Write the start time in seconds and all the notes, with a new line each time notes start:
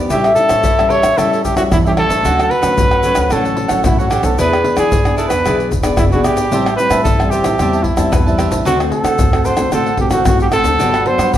Already playing: D4
0.10 A1 A2 G3 C#4 E4 G4 A4 C#5 E5, pandeiro, shaker, surdo
0.24 A4 C#5 E5, pandeiro, tamborim, shaker
0.36 G3 C#4 E4 A4, muted cavaquinho stroke, pandeiro, shaker
0.49 A2 A4 C#5 E5, pandeiro, tamborim, shaker
0.64 A1 E3 E4, pandeiro, shaker, surdo
0.78 G3 C#4 E4 A4 C#5 E5, pandeiro, tamborim, shaker
0.89 G4 A4 C#5 E5, pandeiro
1.02 A1 A4 C#5 E5, pandeiro, tamborim, shaker
1.18 E2 A2 G3 C#4 E4 G4 A4 C#5 E5, pandeiro, tamborim, shaker, surdo
1.31 A4 C#5 E5, pandeiro, shaker
1.43 G4, muted cavaquinho stroke, pandeiro, shaker, surdo
1.56 E2 G3 C#4 E4 F#4 A4 C#5 E5, pandeiro, tamborim, shaker
1.71 E2 E3 E4, pandeiro, tamborim, shaker, surdo
1.85 G3 C#4 E4 G4 A4 C#5 E5, pandeiro, shaker
1.97 G4 A4 C#5 E5, pandeiro, tamborim
2.10 A1 A4 C#5 E5, pandeiro, shaker
2.24 D2 D3 F#3 A3 C#4 D4 F#4 A4 C#5 F#5, pandeiro, shaker, surdo
2.38 A4 C#5 F#5, pandeiro, tamborim, shaker
2.50 B4, muted cavaquinho stroke, pandeiro
2.62 D3 F#3 A3 C#4 A4 C#5 F#5, pandeiro, tamborim, shaker
2.78 D2 A2, pandeiro, shaker, surdo
2.91 A4 C#5 F#5, pandeiro, tamborim, shaker
3.03 F#3 A3 C#4 D4 A4 C#5 F#5, pandeiro, shaker
3.15 D2 A4 C#5 F#5, pandeiro, tamborim, shaker
3.30 A1 D3 F#3 A3 C#4 D4 A4 C#5 F#5, pandeiro, tamborim, shaker, surdo
3.45 A4 C#5 F#5, pandeiro, shaker
3.57 muted cavaquinho stroke, pandeiro
3.68 A1 F#3 A3 C#4 A4 C#5 F#5, pandeiro, tamborim, shaker
3.84 A1 A2 E4, pandeiro, tamborim, shaker, surdo
3.98 F#4 A4 C#5 F#5, pandeiro, shaker
4.10 F#3 A3 C#4 D4 G4 A4 C#5 F#5, pandeiro, tamborim, shaker
4.23 B1 A4 C#5 F#5, pandeiro, shaker
4.37 E2 E3 B3 D4 E4 G#4 B4 D5, pandeiro, shaker, surdo
4.52 G#4 B4 D5, pandeiro, tamborim, shaker
4.63 B3 D4 G#4, muted cavaquinho stroke, pandeiro
4.76 E3 G#4 B4 D5, pandeiro, tamborim, shaker
4.91 E2 B2, pandeiro, shaker, surdo
5.05 B3 D4 G#4 B4 D5, pandeiro, tamborim, shaker
5.17 E4 G#4 A4 B4 D5, pandeiro, shaker
5.29 E2 G#4 B4 D5, pandeiro, tamborim, shaker
5.44 B1 E3 B3 D4 E4 G#4 B4 D5, pandeiro, tamborim, shaker, surdo
5.59 G#4 B4 D5, pandeiro, shaker
5.70 E1, muted cavaquinho stroke, pandeiro, shaker, surdo
5.83 B3 D4 G#4 B4 D5, pandeiro, tamborim, shaker
5.97 F#1 B2 E4, pandeiro, tamborim, shaker, surdo
6.11 B3 D4 F#4 G#4 B4 D5, pandeiro, shaker
6.24 G#1 E4 G4 G#4 B4 D5, pandeiro, tamborim, shaker
6.37 G#4 B4 D5, pandeiro, shaker
6.51 A1 A2 G3 C4 E4 G4 C5 E5 A5, pandeiro, shaker, surdo
6.65 C5 E5 A5, pandeiro, tamborim, shaker
6.77 G3 C4 E4 B4, muted cavaquinho stroke, pandeiro, shaker
6.90 A2 C5 E5 A5, pandeiro, tamborim, shaker
7.04 A1 E3 A4, pandeiro, shaker, surdo
7.19 G3 C4 E4 C5 E5 A5, pandeiro, tamborim, shaker
7.30 G4 C5 E5 A5, pandeiro, shaker
7.44 A1 C5 E5 A5, pandeiro, tamborim, shaker
7.59 E2 A2 G3 C4 E4 G4 C5 E5 A5, pandeiro, tamborim, shaker, surdo
7.73 C5 E5 A5, pandeiro, shaker
7.83 E4, muted cavaquinho stroke, pandeiro, surdo
7.97 E2 G3 C4 E4 C5 E5 A5, pandeiro, tamborim, shaker
8.12 E2 E3 B4, pandeiro, tamborim, shaker, surdo
8.26 G3 C4 E4 C5 E5 A5, pandeiro, shaker
8.38 G4 C5 E5 A5, pandeiro, tamborim, shaker
8.50 A1 C5 E5 A5, pandeiro, shaker
8.65 D2 D3 A3 C4 D4 F#4 A4 C5 F#5, pandeiro, shaker, surdo
8.79 A3 C4 F#4 A4 C5 F#5, pandeiro, tamborim, shaker
8.92 A4, muted cavaquinho stroke, pandeiro
9.04 D3 A4 C5 F#5, pandeiro, tamborim, shaker
9.19 D2 A2 A3 C4 F#4, pandeiro, shaker, surdo
9.33 A3 C4 F#4 A4 C5 F#5, pandeiro, tamborim, shaker
9.45 D4 A4 C5 F#5, pandeiro, shaker
9.57 D2 A3 C4 F#4 A4 C5 F#5, pandeiro, tamborim, shaker
9.72 A1 D3 A3 C4 D4 F#4 A4 C5 F#5, pandeiro, tamborim, shaker, surdo
9.86 A4 C5 F#5, pandeiro, shaker
9.97 A3 C4 F#4 G4, pandeiro, surdo
10.11 A1 F#4 A4 C5 F#5, pandeiro, tamborim, shaker
10.25 A1 A2 A3 C4 F#4, pandeiro, tamborim, shaker, surdo
10.40 G4 A4 C5 F#5, pandeiro, shaker
10.52 A3 C4 D4 F#4 A4 C5 F#5, pandeiro, tamborim, shaker
10.64 D2 C5 F#5, pandeiro, shaker
10.68 A4
10.79 G1 G2 F#3 B3 D4 F#4 G4 B4 F#5, pandeiro, shaker, surdo
10.94 G4 B4 F#5, pandeiro, tamborim, shaker
11.06 F#3 B3 D4 C5, muted cavaquinho stroke, pandeiro
11.18 G2 G4 B4 F#5, pandeiro, tamborim, shaker
11.33 G1 D3, pandeiro, shaker, surdo